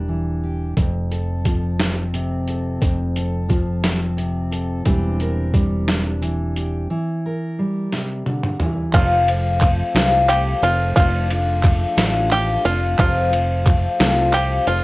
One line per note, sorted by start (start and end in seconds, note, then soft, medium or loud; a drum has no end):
0.00 0.73 E1 medium
0.00 0.72 G3 medium
0.00 0.73 D4 medium
0.00 0.43 A#4 medium
0.09 0.73 E3 medium
0.44 0.73 G4 soft
0.77 2.78 F1 medium
0.77 2.79 F2 medium
0.77 kick medium
0.77 closed hi-hat medium
1.11 2.48 A4 medium
1.11 closed hi-hat soft
1.45 3.47 F3 medium
1.45 kick medium
1.45 closed hi-hat medium
1.79 3.83 C4 soft
1.79 snare medium
1.79 closed hi-hat medium
2.13 2.82 C3 medium
2.13 closed hi-hat medium
2.47 2.78 A4 soft
2.47 closed hi-hat medium
2.81 4.82 F1 medium
2.81 4.86 F2 medium
2.81 kick medium
2.81 closed hi-hat medium
3.16 4.50 A4 soft
3.16 closed hi-hat medium
3.49 4.85 F3 medium
3.49 kick medium
3.49 closed hi-hat medium
3.84 4.86 C4 soft
3.84 snare medium
3.84 closed hi-hat medium
4.17 4.85 C3 medium
4.17 closed hi-hat medium
4.51 4.82 A4 soft
4.51 closed hi-hat medium
4.85 6.86 E1 medium
4.85 6.20 E3 medium
4.85 5.53 G3 medium
4.85 7.29 C4 medium
4.85 5.89 D4 medium
4.85 5.20 G4 medium
4.85 kick loud
4.85 closed hi-hat medium
5.20 6.56 A#4 medium
5.20 closed hi-hat medium
5.54 6.86 G3 medium
5.54 kick medium
5.54 closed hi-hat medium
5.88 6.86 D4 soft
5.88 snare medium
5.88 closed hi-hat medium
6.22 6.86 E3 medium
6.22 closed hi-hat soft
6.56 6.86 G4 soft
6.56 closed hi-hat medium
6.90 7.92 E3 medium
7.26 8.90 A#4 medium
7.59 8.90 G3 medium
7.93 8.26 C3 soft
7.93 snare soft
8.26 8.60 D3 medium
8.26 high tom medium
8.43 mid tom medium
8.60 8.94 E3 medium
8.60 mid tom medium
8.93 9.81 F1 loud
8.93 9.28 F2 medium
8.93 9.28 C3 medium
8.93 9.28 F3 medium
8.93 9.28 A3 medium
8.93 9.28 C4 medium
8.93 9.60 F4 medium
8.93 9.26 F4 loud
8.93 kick loud
8.93 clap loud
8.93 ride loud
9.28 9.59 F3 medium
9.28 9.61 A3 medium
9.28 9.62 C4 medium
9.28 9.61 F4 medium
9.28 ride medium
9.61 9.95 F3 medium
9.61 9.94 A3 medium
9.61 9.94 C4 medium
9.61 9.94 F4 medium
9.61 kick medium
9.61 clap medium
9.61 ride medium
9.95 10.53 C2 loud
9.95 10.30 F2 medium
9.95 10.30 C3 medium
9.95 10.28 F3 medium
9.95 10.29 A3 medium
9.95 10.29 C4 medium
9.95 10.29 F4 medium
9.95 snare loud
9.95 ride medium
10.29 10.63 F3 medium
10.29 10.63 A3 medium
10.29 10.62 C4 medium
10.29 10.61 F4 medium
10.29 10.62 G4 medium
10.29 clap medium
10.29 ride medium
10.62 10.92 F1 loud
10.62 10.94 F3 medium
10.62 10.95 A3 medium
10.62 10.96 C4 medium
10.62 10.96 F4 medium
10.62 10.95 F4 medium
10.62 ride medium
10.95 11.84 F1 loud
10.95 11.30 F3 medium
10.95 11.30 A3 medium
10.95 11.29 D4 loud
10.95 11.62 F4 medium
10.95 11.27 F4 loud
10.95 kick loud
10.95 clap loud
10.95 ride medium
11.28 11.63 A3 medium
11.28 11.64 D4 medium
11.28 11.63 F4 medium
11.28 ride medium
11.63 11.97 F3 medium
11.63 11.98 A3 medium
11.63 11.97 D4 medium
11.63 11.96 F4 medium
11.63 kick medium
11.63 clap loud
11.63 ride medium
11.97 12.56 A1 loud
11.97 12.28 F3 medium
11.97 12.29 A3 medium
11.97 12.30 D4 medium
11.97 12.31 F4 medium
11.97 snare loud
11.97 ride medium
12.29 12.64 F3 medium
12.29 12.65 A3 medium
12.29 12.64 D4 medium
12.29 12.63 F4 medium
12.29 12.65 G4 medium
12.29 clap loud
12.29 ride medium
12.65 12.94 F1 medium
12.65 12.98 A3 medium
12.65 12.99 D4 medium
12.65 12.98 F4 medium
12.65 ride medium
12.97 13.86 F1 loud
12.97 13.32 F2 medium
12.97 13.32 C3 medium
12.97 13.32 F3 loud
12.97 13.32 A3 medium
12.97 13.31 C4 loud
12.97 13.29 F4 medium
12.97 13.65 F4 loud
12.97 kick loud
12.97 clap loud
12.97 ride medium
13.30 13.63 F3 medium
13.30 13.65 A3 medium
13.30 13.65 C4 medium
13.30 13.65 F4 medium
13.30 ride medium
13.64 13.99 F3 medium
13.64 13.99 A3 medium
13.64 13.98 C4 medium
13.64 13.98 F4 medium
13.64 kick medium
13.64 clap loud
13.64 ride medium
13.99 14.58 C2 loud
13.99 14.34 F2 medium
13.99 14.34 C3 medium
13.99 14.31 F3 medium
13.99 14.32 A3 medium
13.99 14.33 C4 medium
13.99 14.33 F4 medium
13.99 snare loud
13.99 ride medium
14.32 14.67 F3 medium
14.32 14.67 A3 medium
14.32 14.66 C4 medium
14.32 14.65 F4 medium
14.32 14.67 G4 medium
14.32 clap loud
14.32 ride medium
14.66 14.84 F1 medium
14.66 14.84 F3 medium
14.66 14.84 A3 medium
14.66 14.84 C4 medium
14.66 14.84 F4 medium
14.66 ride medium